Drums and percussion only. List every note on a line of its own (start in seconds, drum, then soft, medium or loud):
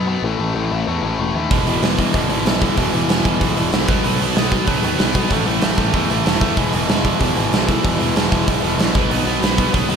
1.51 kick loud
1.51 open hi-hat medium
1.67 open hi-hat medium
1.83 snare loud
1.83 open hi-hat medium
1.99 kick medium
1.99 open hi-hat medium
2.14 kick medium
2.14 open hi-hat medium
2.30 open hi-hat medium
2.46 snare loud
2.46 open hi-hat medium
2.61 kick medium
2.61 open hi-hat medium
2.77 kick medium
2.77 open hi-hat medium
2.94 open hi-hat soft
3.09 snare loud
3.09 open hi-hat medium
3.25 kick medium
3.25 open hi-hat medium
3.41 kick medium
3.41 open hi-hat medium
3.57 open hi-hat medium
3.73 snare loud
3.73 open hi-hat medium
3.88 kick loud
3.88 open hi-hat medium
4.04 open hi-hat medium
4.20 open hi-hat medium
4.36 snare loud
4.36 open hi-hat medium
4.51 kick medium
4.51 open hi-hat medium
4.67 kick medium
4.67 open hi-hat medium
4.83 open hi-hat medium
4.99 snare loud
4.99 open hi-hat medium
5.15 kick medium
5.15 open hi-hat medium
5.30 kick medium
5.30 open hi-hat medium
5.46 open hi-hat soft
5.61 snare loud
5.61 open hi-hat medium
5.77 kick medium
5.77 open hi-hat medium
5.93 kick medium
5.93 open hi-hat medium
6.10 open hi-hat medium
6.26 snare loud
6.26 open hi-hat medium
6.41 kick medium
6.41 open hi-hat medium
6.57 kick medium
6.57 open hi-hat medium
6.73 open hi-hat medium
6.89 snare loud
6.89 open hi-hat medium
7.05 kick medium
7.05 open hi-hat medium
7.20 kick medium
7.20 open hi-hat medium
7.36 open hi-hat medium
7.53 snare loud
7.53 open hi-hat medium
7.68 kick medium
7.68 open hi-hat medium
7.85 kick medium
7.85 open hi-hat medium
8.01 open hi-hat medium
8.16 snare loud
8.16 open hi-hat medium
8.32 kick medium
8.32 open hi-hat medium
8.48 kick medium
8.48 open hi-hat medium
8.64 open hi-hat medium
8.79 snare loud
8.79 open hi-hat medium
8.95 kick loud
8.95 open hi-hat medium
9.11 open hi-hat medium
9.27 open hi-hat medium
9.43 snare loud
9.43 open hi-hat medium
9.58 kick medium
9.58 open hi-hat medium
9.74 kick medium
9.74 open hi-hat medium
9.90 open hi-hat medium